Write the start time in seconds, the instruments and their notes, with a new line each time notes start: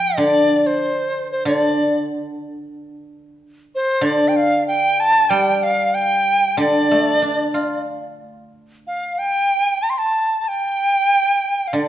Already playing: guzheng F3, dizi G5
0.17 guzheng D3, dizi D5
0.66 dizi C5
1.32 dizi C5
1.45 guzheng D3, dizi D5
3.75 dizi C5
4.01 guzheng D3, dizi D5
4.28 dizi G5
4.36 dizi F5
4.68 dizi G5
5.00 dizi A5
5.29 guzheng G3, dizi G5
5.63 dizi F5
5.95 dizi G5
6.57 guzheng D3, dizi D5
6.91 guzheng A3
7.22 guzheng D4
7.54 guzheng F4
8.87 dizi F5
9.19 dizi G5
9.83 dizi A5
9.90 dizi C6
9.98 dizi A5
10.41 dizi A5
10.48 dizi G5
11.68 dizi F5
11.73 guzheng D3, dizi D5